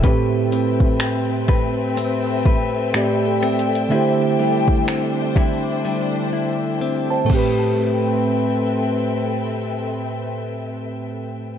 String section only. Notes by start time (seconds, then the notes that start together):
0.04 C4 A4 B4 E5 G5
3.91 D4 C5
7.30 C4 A4 B4 E5 G5